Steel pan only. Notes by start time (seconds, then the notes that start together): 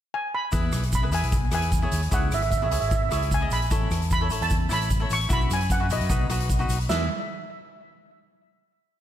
0.14 G#5
0.35 B5
0.95 B5
1.14 G#5
1.55 G#5
2.14 F#5
2.34 E5
2.43 E5
2.51 E5
2.58 E5
2.66 E5
2.73 E5
2.80 E5
2.89 E5
2.94 E5
3.02 E5
3.09 E5
3.17 E5
3.34 G#5
3.53 B5
4.13 B5
4.42 A5
4.73 B5
5.13 C#6
5.33 B5
5.53 G#5
5.72 F#5
5.93 D#5
6.89 E5